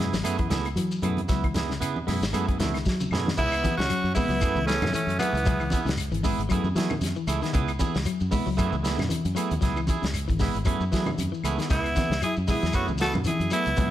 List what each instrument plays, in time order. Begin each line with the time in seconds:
Already playing: fingered electric bass F#2, clean electric guitar B3
0.00 clean electric guitar E4 G#4, snare, shekere
0.13 fingered electric bass G#1, clean electric guitar F#3, snare, closed hi-hat, high conga, shekere
0.24 fingered electric bass F#2, clean electric guitar A3 B3 E4 G#4, closed hi-hat, claves, shekere
0.39 clean electric guitar E3 E4 G#4, kick, closed hi-hat
0.50 fingered electric bass C#2, clean electric guitar A3 B3 E4 G#4, snare, closed hi-hat, high conga, shekere
0.65 muted clean electric guitar stroke, closed hi-hat, claves, shekere
0.76 clean electric guitar E3, fingered electric bass F#3, closed hi-hat, shekere
0.91 shekere
1.02 fingered electric bass F#2, clean electric guitar F#3 A3 B3 E4 G#4, closed hi-hat, low conga, claves, shekere
1.17 closed hi-hat, high conga
1.28 fingered electric bass C#2, clean electric guitar F#3 B3 E4, muted clean electric guitar stroke, kick, snare, closed hi-hat, high conga, shekere
1.44 clean electric guitar E3, kick, closed hi-hat, claves
1.54 clean electric guitar B3 E4 G#4, snare, closed hi-hat, high conga, shekere
1.70 clean electric guitar C#3, snare, shekere
1.80 fingered electric bass C#3, clean electric guitar B3 E4 G#4, closed hi-hat, high conga, claves, shekere
1.96 high conga
2.07 fingered electric bass F#2, clean electric guitar G#3 B3 E4 G#4, snare, open hi-hat, low conga, shekere
2.21 fingered electric bass G#1, snare, shekere
2.33 fingered electric bass F#2, clean electric guitar G#3 A3 B3 E4 G#4, closed hi-hat, high conga, claves, shekere
2.48 clean electric guitar B3 E4 G#4, kick, closed hi-hat
2.59 fingered electric bass C#2, clean electric guitar E3 A3 B3 E4, muted clean electric guitar stroke, snare, closed hi-hat, high conga, low conga, shekere
2.74 clean electric guitar D#3, snare, closed hi-hat, claves, shekere
2.85 fingered electric bass F#3, kick, snare, shekere
3.00 clean electric guitar C#3, high conga, shekere
3.11 fingered electric bass F#2, clean electric guitar A3 B3 E4 G#4, snare, low conga, claves, shekere
3.26 clean electric guitar D#3, snare, high conga
3.37 fingered electric bass C#2, clean electric guitar C#3 B3 E4 G#4, alto saxophone B3, tenor saxophone E4, kick, crash, low conga, shekere
3.52 closed hi-hat, claves, shekere
3.63 clean electric guitar E3 B3 E4 G#4, kick, closed hi-hat, high conga, shekere
3.77 fingered electric bass C#2, alto saxophone C#4, tenor saxophone F#4, snare, shekere
3.89 clean electric guitar F#3, closed hi-hat, claves, shekere
4.04 fingered electric bass F#2, shekere
4.14 clean electric guitar G#3 B3 E4 G#4, alto saxophone B3, tenor saxophone E4, muted fingered electric bass stroke, kick, open hi-hat, high conga, low conga, shekere
4.29 fingered electric bass C#2, clean electric guitar F#3, shekere
4.41 fingered electric bass F#2, clean electric guitar A3 B3 E4 G#4, kick, closed hi-hat, claves, shekere
4.55 fingered electric bass C#2, clean electric guitar E3, high conga, shekere
4.65 alto saxophone A3, clean electric guitar A3 B3 E4 G#4, tenor saxophone C#4, closed hi-hat, shekere
4.70 snare
4.82 fingered electric bass F#2, clean electric guitar D#3, snare, high conga, low conga, claves, shekere
4.92 clean electric guitar E3, alto saxophone A3, tenor saxophone C#4, closed hi-hat, high conga, shekere
5.07 fingered electric bass F#2, closed hi-hat, shekere
5.19 alto saxophone E3, clean electric guitar F#3 A3 B3 E4 G#4, tenor saxophone B3, closed hi-hat, high conga, claves, shekere
5.33 fingered electric bass C#2, shekere
5.37 closed hi-hat
5.44 fingered electric bass C#2, clean electric guitar F#3 E4 G#4, muted clean electric guitar stroke, kick, closed hi-hat, low conga, shekere
5.60 clean electric guitar E3, claves, shekere
5.70 clean electric guitar B3 E4 G#4, kick, closed hi-hat, high conga, shekere
5.85 fingered electric bass C#2, clean electric guitar C#3, closed hi-hat, shekere
5.89 snare
5.97 closed hi-hat, claves, shekere
6.12 fingered electric bass G#1, clean electric guitar E3, closed hi-hat, shekere
6.23 clean electric guitar G#3 B3 E4 G#4, kick, open hi-hat, high conga, shekere
6.38 fingered electric bass G#1, closed hi-hat, shekere
6.49 fingered electric bass F#2, clean electric guitar F#3 A3 B3 E4 G#4, kick, closed hi-hat, claves, shekere
6.64 fingered electric bass F#2, high conga, shekere
6.75 clean electric guitar E3 A3 B3 E4 G#4, fingered electric bass F#3, snare, closed hi-hat, shekere
6.90 clean electric guitar D#3, high conga, low conga, claves, shekere
7.01 fingered electric bass F#2, snare, closed hi-hat, high conga, shekere
7.16 clean electric guitar E3, shekere
7.27 fingered electric bass C#2, clean electric guitar A3 E4 G#4, closed hi-hat, claves, shekere
7.42 clean electric guitar D#3 B3 E4 G#4, snare, closed hi-hat, shekere
7.53 fingered electric bass C#2, clean electric guitar C#3 B3 E4 G#4, kick, closed hi-hat, low conga, shekere
7.68 closed hi-hat, claves, shekere
7.79 clean electric guitar E3 B3 E4 G#4, kick, closed hi-hat, high conga, shekere
7.94 fingered electric bass C#2, snare, shekere
8.05 clean electric guitar F#3, closed hi-hat, claves, shekere
8.20 fingered electric bass F#2, shekere
8.31 clean electric guitar G#3 B3 E4, muted fingered electric bass stroke, kick, open hi-hat, high conga, low conga, shekere
8.46 fingered electric bass C#2, clean electric guitar F#3, shekere
8.57 fingered electric bass F#2, clean electric guitar A3 B3 E4 G#4, kick, closed hi-hat, claves, shekere
8.72 fingered electric bass C#2, clean electric guitar E3, shekere
8.83 clean electric guitar A3 B3 E4 G#4, snare, closed hi-hat, shekere
8.98 fingered electric bass F#2, clean electric guitar D#3, snare, high conga, low conga, claves, shekere
9.09 clean electric guitar E3, closed hi-hat, high conga, shekere
9.25 fingered electric bass F#2, closed hi-hat, shekere
9.35 clean electric guitar F#3 A3 B3 E4 G#4, closed hi-hat, claves, shekere
9.51 fingered electric bass D#2, closed hi-hat, high conga, shekere
9.61 fingered electric bass C#2, clean electric guitar F#3 B3 E4 G#4, kick, snare, closed hi-hat, low conga, shekere
9.76 clean electric guitar E3, claves, shekere
9.87 clean electric guitar E4 G#4, muted clean electric guitar stroke, kick, closed hi-hat, high conga, shekere
10.02 fingered electric bass C#2, clean electric guitar C#3, snare, closed hi-hat, shekere
10.14 closed hi-hat, claves, shekere
10.28 fingered electric bass G#1, clean electric guitar E3, kick, closed hi-hat, shekere
10.39 clean electric guitar G#3 B3 E4 G#4, kick, snare, open hi-hat, high conga, low conga, shekere
10.55 fingered electric bass G#1, closed hi-hat, shekere
10.65 fingered electric bass F#2, clean electric guitar F#3 A3 B3 E4 G#4, kick, closed hi-hat, claves, shekere
10.80 fingered electric bass F#2, shekere
10.92 clean electric guitar E3 A3 B3 E4 G#4, fingered electric bass F#3, kick, snare, closed hi-hat, shekere
11.06 clean electric guitar D#3, high conga, low conga, claves, shekere
11.18 fingered electric bass F#2, closed hi-hat, high conga, shekere
11.32 clean electric guitar E3, shekere
11.44 fingered electric bass C#2, clean electric guitar A3 B3 E4 G#4, closed hi-hat, claves, shekere
11.58 clean electric guitar D#3 B3 E4 G#4, snare, closed hi-hat, shekere
11.70 fingered electric bass C#2, clean electric guitar C#3 B3 E4 G#4, alto saxophone B3, tenor saxophone E4, kick, snare, closed hi-hat, low conga, shekere
11.84 closed hi-hat, claves, shekere
11.96 clean electric guitar E3 B3 E4 G#4, kick, snare, closed hi-hat, high conga, shekere
12.10 fingered electric bass C#2, snare, shekere
12.22 clean electric guitar F#3, alto saxophone E4, tenor saxophone G#4, closed hi-hat, claves, shekere
12.36 fingered electric bass F#2, shekere
12.48 clean electric guitar G#3 B3 E4 G#4, alto saxophone E4, tenor saxophone G#4, muted fingered electric bass stroke, kick, open hi-hat, high conga, low conga, shekere
12.62 fingered electric bass E2, clean electric guitar F#3, snare, shekere
12.73 fingered electric bass F#2, clean electric guitar A3 B3 E4 G#4, alto saxophone C#4, tenor saxophone F#4, kick, closed hi-hat, claves, shekere
12.87 fingered electric bass C#2, clean electric guitar E3, high conga, shekere
12.98 clean electric guitar A3 B3 E4 G#4, alto saxophone F#4, tenor saxophone A4, snare, closed hi-hat, shekere
13.13 fingered electric bass F#2, clean electric guitar D#3, high conga, low conga, claves, shekere
13.24 clean electric guitar E3, alto saxophone E4, tenor saxophone G#4, closed hi-hat, shekere
13.28 high conga
13.40 fingered electric bass F#2, closed hi-hat, shekere
13.51 clean electric guitar F#3 A3 B3 E4 G#4, alto saxophone B3, tenor saxophone E4, closed hi-hat, claves, shekere
13.65 fingered electric bass C#2, closed hi-hat, shekere
13.77 fingered electric bass C#2, clean electric guitar F#3 B3 E4 G#4, kick, closed hi-hat, low conga, shekere